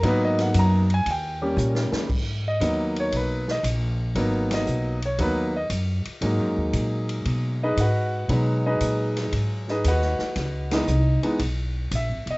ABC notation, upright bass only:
X:1
M:4/4
L:1/8
Q:"Swing" 1/4=116
K:G#m
V:1 name="Upright bass" clef=bass
G,,2 F,,2 D,,2 A,, z | G,,2 D,,2 B,,,2 A,,,2 | G,,,2 B,,,2 D,,2 F,, z | (3G,, F,, D,, A,,2 B,,2 G,,2 |
B,,2 A,,2 G,,2 D,, z | C,,2 ^B,,, z =B,,,2 (3A,,, G,,, E,,, |]